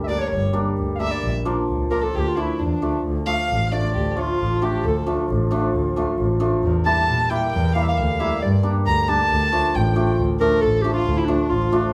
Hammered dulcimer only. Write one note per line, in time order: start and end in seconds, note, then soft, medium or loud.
0.09 0.52 G3 medium
0.09 0.20 A#3 medium
0.09 0.20 D4 medium
0.53 0.98 G3 medium
0.53 0.65 A#3 medium
0.53 0.65 D4 medium
0.99 1.27 G3 medium
0.99 1.11 A#3 medium
0.99 1.11 D4 medium
1.45 1.90 F3 medium
1.45 1.57 A#3 medium
1.45 1.57 D4 medium
1.91 2.18 F3 medium
1.91 2.02 A#3 medium
1.91 2.02 D4 medium
2.37 2.81 F3 medium
2.37 2.48 A3 medium
2.37 2.48 D4 medium
2.82 3.09 F3 medium
2.82 2.93 A3 medium
2.82 2.93 D4 medium
3.26 3.71 F3 medium
3.26 3.38 A3 medium
3.26 3.38 D4 medium
3.72 4.16 F3 medium
3.72 3.83 A3 medium
3.72 3.83 D4 medium
4.17 4.61 F3 medium
4.17 4.28 A3 medium
4.17 4.28 D4 medium
4.62 5.05 F3 medium
4.62 4.73 A3 medium
4.62 4.73 D4 medium
5.06 5.49 F3 medium
5.06 5.18 A3 medium
5.06 5.18 D4 medium
5.51 5.95 F3 medium
5.51 5.63 A3 medium
5.51 5.63 D4 medium
5.96 6.39 F3 medium
5.96 6.08 A3 medium
5.96 6.08 D4 medium
6.40 6.69 F3 medium
6.40 6.52 A3 medium
6.40 6.52 D4 medium
6.86 7.30 G3 medium
6.86 6.97 A#3 medium
6.86 6.97 E4 medium
7.31 7.74 G3 medium
7.31 7.42 A#3 medium
7.31 7.42 E4 medium
7.75 8.19 G3 medium
7.75 7.86 A#3 medium
7.75 7.86 E4 medium
8.20 8.47 G3 medium
8.20 8.31 A#3 medium
8.20 8.31 E4 medium
8.63 9.07 G3 medium
8.63 8.75 A#3 medium
8.63 8.75 D4 medium
9.08 9.35 G3 medium
9.08 9.19 A#3 medium
9.08 9.19 D4 medium
9.52 9.94 F3 medium
9.52 9.63 A3 medium
9.52 9.64 D4 medium
9.96 10.23 F3 medium
9.96 10.07 A3 medium
9.96 10.07 D4 medium
10.41 10.83 F3 medium
10.41 10.52 A3 medium
10.41 10.52 D4 medium
10.84 11.27 F3 medium
10.84 10.95 A3 medium
10.84 10.95 D4 medium
11.28 11.71 F3 medium
11.28 11.39 A3 medium
11.28 11.39 D4 medium
11.72 11.93 F3 medium
11.72 11.83 A3 medium
11.72 11.83 D4 medium